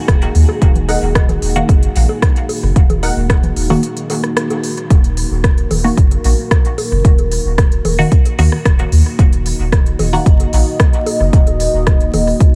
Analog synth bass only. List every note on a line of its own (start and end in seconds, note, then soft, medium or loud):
0.08 0.27 D#1 medium
0.35 0.44 D#2 medium
0.62 0.95 D#1 loud
1.02 1.35 D#1 loud
1.42 1.61 D#1 medium
1.69 1.87 F#1 medium
1.96 2.05 A#1 medium
2.63 2.72 F#1 medium
2.76 3.10 D#1 loud
3.17 3.50 D#1 loud
3.57 3.75 D#1 medium
4.90 5.24 D#1 loud
5.31 5.64 D#1 loud
5.71 5.89 D#1 loud
5.97 6.16 F#1 medium
6.24 6.34 A#1 medium
6.92 7.00 F#1 medium
7.05 7.38 D#1 loud
7.45 7.78 D#1 loud
7.85 8.03 D#1 medium
8.38 8.48 D#2 loud
8.65 8.84 D#1 medium
8.92 9.01 D#2 medium
9.19 9.52 D#1 loud
9.59 9.93 D#1 loud
9.99 10.18 D#1 loud
10.26 10.45 F#1 medium
10.53 10.62 A#1 medium
11.20 11.29 F#1 medium
11.33 11.67 D#1 loud
11.74 12.07 D#1 loud
12.14 12.32 D#1 medium